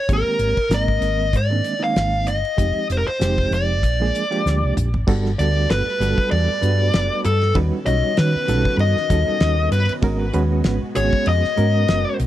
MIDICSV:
0, 0, Header, 1, 7, 480
1, 0, Start_track
1, 0, Tempo, 619835
1, 78, Time_signature, 4, 2, 24, 8
1, 9500, End_track
2, 0, Start_track
2, 0, Title_t, "Lead electric guitar"
2, 0, Program_c, 0, 29
2, 102, Note_on_c, 0, 70, 86
2, 541, Note_off_c, 0, 70, 0
2, 576, Note_on_c, 0, 75, 74
2, 1058, Note_off_c, 0, 75, 0
2, 1061, Note_on_c, 0, 74, 71
2, 1420, Note_off_c, 0, 74, 0
2, 1423, Note_on_c, 0, 77, 77
2, 1764, Note_off_c, 0, 77, 0
2, 1767, Note_on_c, 0, 75, 75
2, 2217, Note_off_c, 0, 75, 0
2, 2264, Note_on_c, 0, 72, 65
2, 2306, Note_off_c, 0, 72, 0
2, 2309, Note_on_c, 0, 70, 59
2, 2368, Note_off_c, 0, 70, 0
2, 2382, Note_on_c, 0, 72, 70
2, 2740, Note_off_c, 0, 72, 0
2, 2743, Note_on_c, 0, 74, 73
2, 3667, Note_off_c, 0, 74, 0
2, 4174, Note_on_c, 0, 74, 74
2, 4406, Note_off_c, 0, 74, 0
2, 4422, Note_on_c, 0, 71, 45
2, 4867, Note_off_c, 0, 71, 0
2, 4888, Note_on_c, 0, 74, 79
2, 5579, Note_off_c, 0, 74, 0
2, 5618, Note_on_c, 0, 69, 46
2, 5848, Note_off_c, 0, 69, 0
2, 6088, Note_on_c, 0, 75, 88
2, 6323, Note_off_c, 0, 75, 0
2, 6335, Note_on_c, 0, 71, 58
2, 6782, Note_off_c, 0, 71, 0
2, 6818, Note_on_c, 0, 75, 81
2, 7502, Note_off_c, 0, 75, 0
2, 7529, Note_on_c, 0, 71, 89
2, 7673, Note_off_c, 0, 71, 0
2, 8490, Note_on_c, 0, 73, 102
2, 8721, Note_off_c, 0, 73, 0
2, 8740, Note_on_c, 0, 75, 65
2, 9419, Note_off_c, 0, 75, 0
2, 9500, End_track
3, 0, Start_track
3, 0, Title_t, "Reed electric piano"
3, 0, Program_c, 1, 4
3, 69, Note_on_c, 1, 51, 59
3, 69, Note_on_c, 1, 56, 55
3, 72, Note_on_c, 1, 58, 58
3, 75, Note_on_c, 1, 60, 56
3, 76, Note_on_c, 1, 67, 61
3, 438, Note_off_c, 1, 51, 0
3, 438, Note_off_c, 1, 56, 0
3, 439, Note_off_c, 1, 58, 0
3, 441, Note_off_c, 1, 60, 0
3, 441, Note_off_c, 1, 67, 0
3, 548, Note_on_c, 1, 51, 67
3, 548, Note_on_c, 1, 56, 65
3, 550, Note_on_c, 1, 58, 67
3, 551, Note_on_c, 1, 60, 68
3, 553, Note_on_c, 1, 70, 82
3, 999, Note_off_c, 1, 51, 0
3, 999, Note_off_c, 1, 56, 0
3, 999, Note_off_c, 1, 58, 0
3, 1000, Note_off_c, 1, 60, 0
3, 1001, Note_off_c, 1, 70, 0
3, 1163, Note_on_c, 1, 51, 63
3, 1163, Note_on_c, 1, 58, 60
3, 1164, Note_on_c, 1, 56, 60
3, 1165, Note_on_c, 1, 60, 60
3, 1167, Note_on_c, 1, 62, 67
3, 1338, Note_off_c, 1, 51, 0
3, 1338, Note_off_c, 1, 58, 0
3, 1339, Note_off_c, 1, 56, 0
3, 1339, Note_off_c, 1, 60, 0
3, 1340, Note_off_c, 1, 62, 0
3, 1387, Note_on_c, 1, 51, 68
3, 1389, Note_on_c, 1, 60, 58
3, 1391, Note_on_c, 1, 56, 55
3, 1393, Note_on_c, 1, 58, 63
3, 1393, Note_on_c, 1, 63, 73
3, 1837, Note_off_c, 1, 51, 0
3, 1838, Note_off_c, 1, 60, 0
3, 1839, Note_off_c, 1, 56, 0
3, 1840, Note_off_c, 1, 58, 0
3, 1840, Note_off_c, 1, 63, 0
3, 1989, Note_on_c, 1, 53, 60
3, 1991, Note_on_c, 1, 56, 52
3, 1993, Note_on_c, 1, 67, 67
3, 1994, Note_on_c, 1, 60, 56
3, 1994, Note_on_c, 1, 63, 53
3, 2362, Note_off_c, 1, 53, 0
3, 2363, Note_off_c, 1, 56, 0
3, 2364, Note_off_c, 1, 60, 0
3, 2364, Note_off_c, 1, 63, 0
3, 2364, Note_off_c, 1, 67, 0
3, 2476, Note_on_c, 1, 53, 70
3, 2476, Note_on_c, 1, 60, 64
3, 2477, Note_on_c, 1, 56, 66
3, 2484, Note_on_c, 1, 63, 65
3, 2490, Note_on_c, 1, 67, 84
3, 2926, Note_off_c, 1, 53, 0
3, 2926, Note_off_c, 1, 60, 0
3, 2927, Note_off_c, 1, 56, 0
3, 2930, Note_off_c, 1, 63, 0
3, 2933, Note_off_c, 1, 67, 0
3, 3098, Note_on_c, 1, 53, 69
3, 3104, Note_on_c, 1, 56, 64
3, 3106, Note_on_c, 1, 62, 58
3, 3109, Note_on_c, 1, 58, 63
3, 3112, Note_on_c, 1, 68, 74
3, 3269, Note_off_c, 1, 53, 0
3, 3272, Note_off_c, 1, 56, 0
3, 3273, Note_off_c, 1, 62, 0
3, 3275, Note_off_c, 1, 58, 0
3, 3276, Note_off_c, 1, 68, 0
3, 3333, Note_on_c, 1, 56, 69
3, 3337, Note_on_c, 1, 53, 83
3, 3337, Note_on_c, 1, 58, 63
3, 3340, Note_on_c, 1, 62, 72
3, 3341, Note_on_c, 1, 67, 84
3, 3773, Note_off_c, 1, 56, 0
3, 3775, Note_off_c, 1, 53, 0
3, 3775, Note_off_c, 1, 58, 0
3, 3776, Note_off_c, 1, 62, 0
3, 3777, Note_off_c, 1, 67, 0
3, 3926, Note_on_c, 1, 55, 92
3, 3931, Note_on_c, 1, 59, 74
3, 3935, Note_on_c, 1, 66, 87
3, 3937, Note_on_c, 1, 62, 79
3, 3938, Note_on_c, 1, 69, 90
3, 4112, Note_off_c, 1, 55, 0
3, 4114, Note_off_c, 1, 59, 0
3, 4116, Note_off_c, 1, 66, 0
3, 4117, Note_off_c, 1, 62, 0
3, 4118, Note_off_c, 1, 69, 0
3, 4174, Note_on_c, 1, 59, 53
3, 4177, Note_on_c, 1, 55, 62
3, 4180, Note_on_c, 1, 62, 58
3, 4184, Note_on_c, 1, 66, 65
3, 4188, Note_on_c, 1, 69, 67
3, 4536, Note_off_c, 1, 59, 0
3, 4538, Note_off_c, 1, 55, 0
3, 4539, Note_off_c, 1, 62, 0
3, 4541, Note_off_c, 1, 66, 0
3, 4543, Note_off_c, 1, 69, 0
3, 4648, Note_on_c, 1, 55, 68
3, 4649, Note_on_c, 1, 59, 60
3, 4656, Note_on_c, 1, 62, 63
3, 4660, Note_on_c, 1, 66, 60
3, 4663, Note_on_c, 1, 69, 73
3, 5013, Note_off_c, 1, 55, 0
3, 5014, Note_off_c, 1, 59, 0
3, 5017, Note_off_c, 1, 62, 0
3, 5019, Note_off_c, 1, 66, 0
3, 5021, Note_off_c, 1, 69, 0
3, 5119, Note_on_c, 1, 55, 66
3, 5119, Note_on_c, 1, 59, 66
3, 5123, Note_on_c, 1, 71, 69
3, 5125, Note_on_c, 1, 62, 61
3, 5129, Note_on_c, 1, 66, 58
3, 5657, Note_off_c, 1, 55, 0
3, 5657, Note_off_c, 1, 59, 0
3, 5659, Note_off_c, 1, 71, 0
3, 5660, Note_off_c, 1, 62, 0
3, 5662, Note_off_c, 1, 66, 0
3, 5846, Note_on_c, 1, 61, 67
3, 5847, Note_on_c, 1, 55, 71
3, 5849, Note_on_c, 1, 63, 73
3, 5850, Note_on_c, 1, 66, 63
3, 5850, Note_on_c, 1, 71, 80
3, 6032, Note_off_c, 1, 55, 0
3, 6032, Note_off_c, 1, 61, 0
3, 6033, Note_off_c, 1, 63, 0
3, 6034, Note_off_c, 1, 66, 0
3, 6034, Note_off_c, 1, 71, 0
3, 6085, Note_on_c, 1, 55, 65
3, 6089, Note_on_c, 1, 61, 57
3, 6089, Note_on_c, 1, 63, 63
3, 6091, Note_on_c, 1, 66, 55
3, 6093, Note_on_c, 1, 73, 65
3, 6451, Note_off_c, 1, 55, 0
3, 6453, Note_off_c, 1, 61, 0
3, 6453, Note_off_c, 1, 63, 0
3, 6454, Note_off_c, 1, 66, 0
3, 6455, Note_off_c, 1, 73, 0
3, 6563, Note_on_c, 1, 55, 70
3, 6572, Note_on_c, 1, 66, 67
3, 6573, Note_on_c, 1, 63, 67
3, 6575, Note_on_c, 1, 61, 66
3, 6576, Note_on_c, 1, 69, 83
3, 6930, Note_off_c, 1, 55, 0
3, 6934, Note_off_c, 1, 63, 0
3, 6934, Note_off_c, 1, 66, 0
3, 6936, Note_off_c, 1, 61, 0
3, 6936, Note_off_c, 1, 69, 0
3, 7049, Note_on_c, 1, 55, 67
3, 7052, Note_on_c, 1, 61, 63
3, 7055, Note_on_c, 1, 66, 57
3, 7055, Note_on_c, 1, 69, 74
3, 7056, Note_on_c, 1, 63, 63
3, 7579, Note_off_c, 1, 55, 0
3, 7581, Note_off_c, 1, 61, 0
3, 7582, Note_off_c, 1, 66, 0
3, 7583, Note_off_c, 1, 63, 0
3, 7583, Note_off_c, 1, 69, 0
3, 7757, Note_on_c, 1, 56, 81
3, 7758, Note_on_c, 1, 59, 70
3, 7766, Note_on_c, 1, 61, 71
3, 7766, Note_on_c, 1, 66, 63
3, 7774, Note_on_c, 1, 70, 86
3, 7945, Note_off_c, 1, 56, 0
3, 7945, Note_off_c, 1, 59, 0
3, 7949, Note_off_c, 1, 61, 0
3, 7949, Note_off_c, 1, 66, 0
3, 7954, Note_off_c, 1, 70, 0
3, 8000, Note_on_c, 1, 56, 81
3, 8006, Note_on_c, 1, 61, 77
3, 8007, Note_on_c, 1, 59, 68
3, 8009, Note_on_c, 1, 71, 93
3, 8013, Note_on_c, 1, 66, 77
3, 8366, Note_off_c, 1, 56, 0
3, 8369, Note_off_c, 1, 59, 0
3, 8369, Note_off_c, 1, 61, 0
3, 8370, Note_off_c, 1, 71, 0
3, 8372, Note_off_c, 1, 66, 0
3, 8481, Note_on_c, 1, 56, 70
3, 8486, Note_on_c, 1, 59, 63
3, 8487, Note_on_c, 1, 66, 72
3, 8490, Note_on_c, 1, 61, 59
3, 8491, Note_on_c, 1, 68, 79
3, 8845, Note_off_c, 1, 56, 0
3, 8848, Note_off_c, 1, 59, 0
3, 8848, Note_off_c, 1, 66, 0
3, 8850, Note_off_c, 1, 61, 0
3, 8850, Note_off_c, 1, 68, 0
3, 8957, Note_on_c, 1, 56, 67
3, 8962, Note_on_c, 1, 59, 64
3, 8963, Note_on_c, 1, 61, 66
3, 8964, Note_on_c, 1, 70, 79
3, 8967, Note_on_c, 1, 66, 68
3, 9490, Note_off_c, 1, 56, 0
3, 9492, Note_off_c, 1, 59, 0
3, 9492, Note_off_c, 1, 61, 0
3, 9493, Note_off_c, 1, 70, 0
3, 9495, Note_off_c, 1, 66, 0
3, 9500, End_track
4, 0, Start_track
4, 0, Title_t, "String machine"
4, 0, Program_c, 2, 50
4, 3936, Note_on_c, 2, 55, 86
4, 3938, Note_on_c, 2, 66, 71
4, 3940, Note_on_c, 2, 69, 74
4, 3945, Note_on_c, 2, 71, 79
4, 5836, Note_off_c, 2, 55, 0
4, 5838, Note_off_c, 2, 69, 0
4, 5840, Note_off_c, 2, 71, 0
4, 5843, Note_on_c, 2, 61, 75
4, 5844, Note_on_c, 2, 59, 76
4, 5846, Note_on_c, 2, 51, 79
4, 7745, Note_off_c, 2, 61, 0
4, 7746, Note_off_c, 2, 51, 0
4, 7772, Note_on_c, 2, 56, 86
4, 9500, Note_off_c, 2, 56, 0
4, 9500, Note_off_c, 2, 59, 0
4, 9500, Note_off_c, 2, 66, 0
4, 9500, End_track
5, 0, Start_track
5, 0, Title_t, "Fingered electric bass"
5, 0, Program_c, 3, 33
5, 71, Note_on_c, 3, 32, 96
5, 187, Note_off_c, 3, 32, 0
5, 303, Note_on_c, 3, 32, 70
5, 423, Note_off_c, 3, 32, 0
5, 537, Note_on_c, 3, 32, 84
5, 750, Note_off_c, 3, 32, 0
5, 786, Note_on_c, 3, 32, 87
5, 1032, Note_on_c, 3, 44, 76
5, 1044, Note_off_c, 3, 32, 0
5, 1240, Note_off_c, 3, 44, 0
5, 1516, Note_on_c, 3, 32, 71
5, 1756, Note_off_c, 3, 32, 0
5, 1756, Note_on_c, 3, 31, 91
5, 1873, Note_off_c, 3, 31, 0
5, 1999, Note_on_c, 3, 29, 85
5, 2115, Note_off_c, 3, 29, 0
5, 2243, Note_on_c, 3, 29, 70
5, 2358, Note_off_c, 3, 29, 0
5, 2483, Note_on_c, 3, 29, 94
5, 2688, Note_off_c, 3, 29, 0
5, 2715, Note_on_c, 3, 29, 84
5, 2965, Note_off_c, 3, 29, 0
5, 2965, Note_on_c, 3, 34, 66
5, 3170, Note_off_c, 3, 34, 0
5, 3452, Note_on_c, 3, 38, 68
5, 3572, Note_off_c, 3, 38, 0
5, 3586, Note_on_c, 3, 36, 73
5, 3682, Note_off_c, 3, 36, 0
5, 3693, Note_on_c, 3, 34, 72
5, 3812, Note_off_c, 3, 34, 0
5, 3826, Note_on_c, 3, 32, 63
5, 3922, Note_off_c, 3, 32, 0
5, 3932, Note_on_c, 3, 31, 80
5, 4135, Note_off_c, 3, 31, 0
5, 4174, Note_on_c, 3, 38, 94
5, 4376, Note_off_c, 3, 38, 0
5, 4414, Note_on_c, 3, 31, 90
5, 4526, Note_off_c, 3, 31, 0
5, 4645, Note_on_c, 3, 31, 85
5, 4761, Note_off_c, 3, 31, 0
5, 4893, Note_on_c, 3, 40, 76
5, 5006, Note_off_c, 3, 40, 0
5, 5130, Note_on_c, 3, 43, 90
5, 5334, Note_off_c, 3, 43, 0
5, 5371, Note_on_c, 3, 30, 71
5, 5484, Note_off_c, 3, 30, 0
5, 5616, Note_on_c, 3, 43, 76
5, 5817, Note_off_c, 3, 43, 0
5, 5849, Note_on_c, 3, 39, 84
5, 5963, Note_off_c, 3, 39, 0
5, 6090, Note_on_c, 3, 35, 81
5, 6203, Note_off_c, 3, 35, 0
5, 6339, Note_on_c, 3, 51, 83
5, 6449, Note_off_c, 3, 51, 0
5, 6570, Note_on_c, 3, 35, 83
5, 6683, Note_off_c, 3, 35, 0
5, 6795, Note_on_c, 3, 43, 91
5, 6914, Note_off_c, 3, 43, 0
5, 7048, Note_on_c, 3, 39, 102
5, 7162, Note_off_c, 3, 39, 0
5, 7286, Note_on_c, 3, 39, 92
5, 7490, Note_off_c, 3, 39, 0
5, 7522, Note_on_c, 3, 43, 86
5, 7638, Note_off_c, 3, 43, 0
5, 7763, Note_on_c, 3, 32, 89
5, 7967, Note_off_c, 3, 32, 0
5, 8008, Note_on_c, 3, 39, 85
5, 8210, Note_off_c, 3, 39, 0
5, 8246, Note_on_c, 3, 32, 80
5, 8359, Note_off_c, 3, 32, 0
5, 8490, Note_on_c, 3, 32, 91
5, 8601, Note_off_c, 3, 32, 0
5, 8726, Note_on_c, 3, 41, 81
5, 8838, Note_off_c, 3, 41, 0
5, 8967, Note_on_c, 3, 44, 93
5, 9168, Note_off_c, 3, 44, 0
5, 9206, Note_on_c, 3, 30, 72
5, 9317, Note_off_c, 3, 30, 0
5, 9445, Note_on_c, 3, 35, 88
5, 9500, Note_off_c, 3, 35, 0
5, 9500, End_track
6, 0, Start_track
6, 0, Title_t, "Muted fingered electric bass strokes"
6, 4537, Note_on_c, 9, 29, 38
6, 4614, Note_off_c, 9, 29, 0
6, 5028, Note_on_c, 9, 29, 35
6, 5105, Note_off_c, 9, 29, 0
6, 6469, Note_on_c, 9, 29, 39
6, 6547, Note_off_c, 9, 29, 0
6, 6940, Note_on_c, 9, 29, 38
6, 7017, Note_off_c, 9, 29, 0
6, 7663, Note_on_c, 9, 29, 33
6, 7741, Note_off_c, 9, 29, 0
6, 8386, Note_on_c, 9, 29, 40
6, 8463, Note_off_c, 9, 29, 0
6, 8866, Note_on_c, 9, 29, 41
6, 8943, Note_off_c, 9, 29, 0
6, 9500, End_track
7, 0, Start_track
7, 0, Title_t, "Drums"
7, 67, Note_on_c, 9, 44, 74
7, 67, Note_on_c, 9, 51, 67
7, 69, Note_on_c, 9, 36, 93
7, 145, Note_off_c, 9, 44, 0
7, 145, Note_off_c, 9, 51, 0
7, 147, Note_off_c, 9, 36, 0
7, 303, Note_on_c, 9, 44, 87
7, 303, Note_on_c, 9, 51, 57
7, 380, Note_off_c, 9, 44, 0
7, 380, Note_off_c, 9, 51, 0
7, 441, Note_on_c, 9, 51, 55
7, 443, Note_on_c, 9, 36, 56
7, 519, Note_off_c, 9, 51, 0
7, 520, Note_off_c, 9, 36, 0
7, 547, Note_on_c, 9, 44, 69
7, 547, Note_on_c, 9, 51, 70
7, 552, Note_on_c, 9, 38, 89
7, 624, Note_off_c, 9, 44, 0
7, 624, Note_off_c, 9, 51, 0
7, 629, Note_off_c, 9, 38, 0
7, 683, Note_on_c, 9, 36, 67
7, 761, Note_off_c, 9, 36, 0
7, 788, Note_on_c, 9, 44, 80
7, 788, Note_on_c, 9, 51, 58
7, 793, Note_on_c, 9, 38, 31
7, 865, Note_off_c, 9, 44, 0
7, 865, Note_off_c, 9, 51, 0
7, 870, Note_off_c, 9, 38, 0
7, 1030, Note_on_c, 9, 44, 81
7, 1030, Note_on_c, 9, 51, 65
7, 1032, Note_on_c, 9, 36, 74
7, 1108, Note_off_c, 9, 44, 0
7, 1108, Note_off_c, 9, 51, 0
7, 1110, Note_off_c, 9, 36, 0
7, 1272, Note_on_c, 9, 44, 71
7, 1272, Note_on_c, 9, 51, 55
7, 1350, Note_off_c, 9, 44, 0
7, 1350, Note_off_c, 9, 51, 0
7, 1518, Note_on_c, 9, 44, 63
7, 1518, Note_on_c, 9, 51, 62
7, 1522, Note_on_c, 9, 38, 95
7, 1595, Note_off_c, 9, 44, 0
7, 1595, Note_off_c, 9, 51, 0
7, 1600, Note_off_c, 9, 38, 0
7, 1755, Note_on_c, 9, 44, 78
7, 1755, Note_on_c, 9, 51, 57
7, 1833, Note_off_c, 9, 44, 0
7, 1833, Note_off_c, 9, 51, 0
7, 1896, Note_on_c, 9, 51, 45
7, 1973, Note_off_c, 9, 51, 0
7, 2000, Note_on_c, 9, 36, 90
7, 2001, Note_on_c, 9, 44, 75
7, 2001, Note_on_c, 9, 51, 66
7, 2077, Note_off_c, 9, 36, 0
7, 2078, Note_off_c, 9, 44, 0
7, 2078, Note_off_c, 9, 51, 0
7, 2243, Note_on_c, 9, 44, 76
7, 2243, Note_on_c, 9, 51, 59
7, 2320, Note_off_c, 9, 44, 0
7, 2320, Note_off_c, 9, 51, 0
7, 2379, Note_on_c, 9, 51, 52
7, 2457, Note_off_c, 9, 51, 0
7, 2487, Note_on_c, 9, 44, 75
7, 2487, Note_on_c, 9, 51, 61
7, 2491, Note_on_c, 9, 38, 90
7, 2564, Note_off_c, 9, 44, 0
7, 2564, Note_off_c, 9, 51, 0
7, 2569, Note_off_c, 9, 38, 0
7, 2618, Note_on_c, 9, 36, 77
7, 2695, Note_off_c, 9, 36, 0
7, 2726, Note_on_c, 9, 44, 84
7, 2726, Note_on_c, 9, 51, 57
7, 2804, Note_off_c, 9, 44, 0
7, 2804, Note_off_c, 9, 51, 0
7, 2967, Note_on_c, 9, 36, 66
7, 2971, Note_on_c, 9, 44, 78
7, 2971, Note_on_c, 9, 51, 70
7, 3044, Note_off_c, 9, 36, 0
7, 3048, Note_off_c, 9, 44, 0
7, 3048, Note_off_c, 9, 51, 0
7, 3212, Note_on_c, 9, 44, 77
7, 3212, Note_on_c, 9, 51, 55
7, 3290, Note_off_c, 9, 44, 0
7, 3290, Note_off_c, 9, 51, 0
7, 3346, Note_on_c, 9, 51, 56
7, 3424, Note_off_c, 9, 51, 0
7, 3456, Note_on_c, 9, 44, 69
7, 3461, Note_on_c, 9, 38, 51
7, 3534, Note_off_c, 9, 44, 0
7, 3538, Note_off_c, 9, 38, 0
7, 3695, Note_on_c, 9, 44, 82
7, 3695, Note_on_c, 9, 45, 74
7, 3772, Note_off_c, 9, 44, 0
7, 3772, Note_off_c, 9, 45, 0
7, 3825, Note_on_c, 9, 43, 68
7, 3902, Note_off_c, 9, 43, 0
7, 3931, Note_on_c, 9, 36, 103
7, 3936, Note_on_c, 9, 49, 87
7, 4009, Note_off_c, 9, 36, 0
7, 4013, Note_off_c, 9, 49, 0
7, 4072, Note_on_c, 9, 38, 29
7, 4149, Note_off_c, 9, 38, 0
7, 4174, Note_on_c, 9, 44, 84
7, 4174, Note_on_c, 9, 51, 60
7, 4252, Note_off_c, 9, 44, 0
7, 4252, Note_off_c, 9, 51, 0
7, 4415, Note_on_c, 9, 51, 68
7, 4419, Note_on_c, 9, 38, 85
7, 4492, Note_off_c, 9, 51, 0
7, 4497, Note_off_c, 9, 38, 0
7, 4656, Note_on_c, 9, 44, 89
7, 4656, Note_on_c, 9, 51, 59
7, 4660, Note_on_c, 9, 38, 35
7, 4733, Note_off_c, 9, 44, 0
7, 4733, Note_off_c, 9, 51, 0
7, 4738, Note_off_c, 9, 38, 0
7, 4784, Note_on_c, 9, 36, 78
7, 4862, Note_off_c, 9, 36, 0
7, 4888, Note_on_c, 9, 51, 67
7, 4966, Note_off_c, 9, 51, 0
7, 5129, Note_on_c, 9, 44, 74
7, 5129, Note_on_c, 9, 51, 49
7, 5207, Note_off_c, 9, 44, 0
7, 5207, Note_off_c, 9, 51, 0
7, 5370, Note_on_c, 9, 51, 76
7, 5375, Note_on_c, 9, 38, 101
7, 5447, Note_off_c, 9, 51, 0
7, 5452, Note_off_c, 9, 38, 0
7, 5609, Note_on_c, 9, 44, 94
7, 5609, Note_on_c, 9, 51, 63
7, 5687, Note_off_c, 9, 44, 0
7, 5687, Note_off_c, 9, 51, 0
7, 5743, Note_on_c, 9, 51, 46
7, 5747, Note_on_c, 9, 38, 29
7, 5820, Note_off_c, 9, 51, 0
7, 5825, Note_off_c, 9, 38, 0
7, 5847, Note_on_c, 9, 51, 72
7, 5849, Note_on_c, 9, 36, 103
7, 5925, Note_off_c, 9, 51, 0
7, 5926, Note_off_c, 9, 36, 0
7, 6088, Note_on_c, 9, 44, 93
7, 6088, Note_on_c, 9, 51, 68
7, 6165, Note_off_c, 9, 44, 0
7, 6165, Note_off_c, 9, 51, 0
7, 6326, Note_on_c, 9, 51, 73
7, 6331, Note_on_c, 9, 38, 89
7, 6404, Note_off_c, 9, 51, 0
7, 6408, Note_off_c, 9, 38, 0
7, 6568, Note_on_c, 9, 44, 90
7, 6568, Note_on_c, 9, 51, 66
7, 6645, Note_off_c, 9, 44, 0
7, 6645, Note_off_c, 9, 51, 0
7, 6701, Note_on_c, 9, 36, 78
7, 6778, Note_off_c, 9, 36, 0
7, 6809, Note_on_c, 9, 51, 74
7, 6886, Note_off_c, 9, 51, 0
7, 6948, Note_on_c, 9, 38, 31
7, 7026, Note_off_c, 9, 38, 0
7, 7048, Note_on_c, 9, 36, 80
7, 7048, Note_on_c, 9, 44, 75
7, 7048, Note_on_c, 9, 51, 63
7, 7125, Note_off_c, 9, 36, 0
7, 7125, Note_off_c, 9, 44, 0
7, 7125, Note_off_c, 9, 51, 0
7, 7282, Note_on_c, 9, 51, 72
7, 7286, Note_on_c, 9, 38, 101
7, 7359, Note_off_c, 9, 51, 0
7, 7364, Note_off_c, 9, 38, 0
7, 7525, Note_on_c, 9, 44, 89
7, 7525, Note_on_c, 9, 51, 69
7, 7602, Note_off_c, 9, 44, 0
7, 7602, Note_off_c, 9, 51, 0
7, 7659, Note_on_c, 9, 51, 58
7, 7736, Note_off_c, 9, 51, 0
7, 7761, Note_on_c, 9, 51, 77
7, 7764, Note_on_c, 9, 36, 99
7, 7839, Note_off_c, 9, 51, 0
7, 7842, Note_off_c, 9, 36, 0
7, 8003, Note_on_c, 9, 44, 94
7, 8003, Note_on_c, 9, 51, 66
7, 8080, Note_off_c, 9, 44, 0
7, 8080, Note_off_c, 9, 51, 0
7, 8239, Note_on_c, 9, 51, 73
7, 8244, Note_on_c, 9, 38, 95
7, 8317, Note_off_c, 9, 51, 0
7, 8321, Note_off_c, 9, 38, 0
7, 8482, Note_on_c, 9, 44, 84
7, 8482, Note_on_c, 9, 51, 65
7, 8559, Note_off_c, 9, 44, 0
7, 8559, Note_off_c, 9, 51, 0
7, 8617, Note_on_c, 9, 36, 74
7, 8694, Note_off_c, 9, 36, 0
7, 8718, Note_on_c, 9, 51, 86
7, 8795, Note_off_c, 9, 51, 0
7, 8862, Note_on_c, 9, 38, 32
7, 8939, Note_off_c, 9, 38, 0
7, 8962, Note_on_c, 9, 44, 72
7, 8962, Note_on_c, 9, 51, 56
7, 9039, Note_off_c, 9, 44, 0
7, 9039, Note_off_c, 9, 51, 0
7, 9202, Note_on_c, 9, 51, 73
7, 9207, Note_on_c, 9, 38, 91
7, 9280, Note_off_c, 9, 51, 0
7, 9284, Note_off_c, 9, 38, 0
7, 9443, Note_on_c, 9, 44, 96
7, 9443, Note_on_c, 9, 51, 60
7, 9500, Note_off_c, 9, 44, 0
7, 9500, Note_off_c, 9, 51, 0
7, 9500, End_track
0, 0, End_of_file